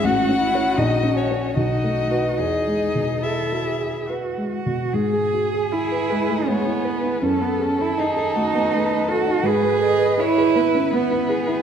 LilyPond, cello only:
\new Staff \with { instrumentName = "Cello" } { \time 3/4 \key e \major \tempo 4 = 79 fis'8 e'8 fis'4 fis'4 | gis'4 a'8 gis'8 fis'8 fis'8 | gis'4 e'4 b4 | cis'16 b16 cis'16 e'16 dis'4. fis'8 |
gis'4 e'4 b4 | }